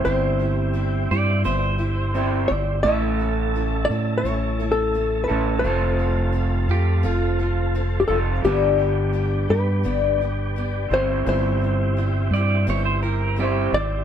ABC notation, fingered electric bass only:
X:1
M:4/4
L:1/8
Q:1/4=86
K:Clyd
V:1 name="Fingered electric bass" clef=bass
G,,,3 G,, G,,,3 G,,, | A,,,3 A,, A,,,3 A,,, | =F,,,3 =F,, F,,,3 F,,, | G,,,3 G,, G,,,3 G,,, |
G,,,3 G,, G,,,3 _A,,, |]